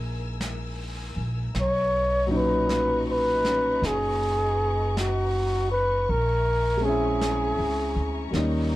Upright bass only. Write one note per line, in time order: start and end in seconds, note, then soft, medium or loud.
0.00 1.12 A#1 medium
1.16 1.53 A#1 soft
1.55 3.78 B1 medium
3.82 6.05 F#1 medium
6.09 7.55 A#1 medium
7.59 7.94 C#2 medium
7.96 8.31 D2 medium
8.33 8.76 D#2 medium